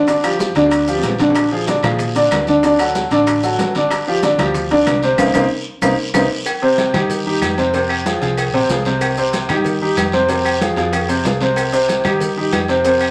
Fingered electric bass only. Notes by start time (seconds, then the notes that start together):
Already playing: G1
0.55 D2
1.03 A#1
1.83 A#2
2.31 D2
3.11 A1
3.58 G1
4.38 D2
4.86 C2
5.18 C2
5.34 C2
5.82 C2
6.14 C2
6.93 G2
7.41 F2
8.22 C2
8.53 A#1
8.69 C2
9.48 G2
9.97 F2
10.76 F2
11.24 C2
12.05 G2
12.53 F2